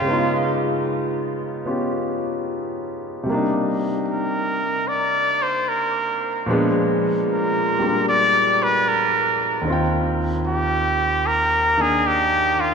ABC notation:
X:1
M:4/4
L:1/8
Q:"Swing" 1/4=75
K:Eb
V:1 name="Muted trumpet"
F z6 z | z2 B2 d c B2 | z2 B2 d _c B2 | z2 G2 B A G F |]
V:2 name="Grand piano"
[_D,A,_CEF]4 [C_DFG]4 | [C,G,B,DE]8 | [B,,F,A,_CD]3 [G,B,DF]4- [G,B,DF] | [E,,E,CFg]4- [E,,E,CFg] [E,B,D]3 |]